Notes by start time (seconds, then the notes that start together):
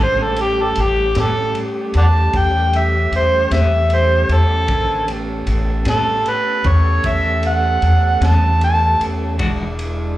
0.00 A1 A2 D3 G3 G#3 A3 B3 C#4 G4 C5
0.23 A4
0.36 G3 A3 C#4 G4, ride
0.42 G4
0.62 A4
0.76 A1, ride
0.81 G4
1.15 A2 G3 B3 C#4, snare, ride
1.20 A4
1.55 ride
1.94 E2, ride
1.98 D5 F#5 A5
2.33 E2 G5, kick, ride
2.73 E5, ride
3.12 E2, ride
3.16 C5
3.51 E2 A2 G3 B3 C#4 E5, snare, ride
3.90 C5, ride
4.29 E2, ride
4.34 A4
4.68 A1 D3 A#3 A4 C5 G#5, kick, ride
5.07 A3 B3 C#4 G4, ride
5.47 A1, ride
5.85 A2 G3 B3 C#4, snare, ride
5.90 A4
6.26 B4, ride
6.64 E2 C#5, kick, ride
7.04 E2, kick, ride
7.08 E5
7.43 F#5, ride
7.82 E2, ride
8.21 E2 A2 G3 B3 C#4, snare, ride
8.26 A5
8.61 A5, ride
9.00 E2, ride
9.38 E1 E3 G#3 D4 E4 F#4, kick, ride
9.42 G#3
9.79 ride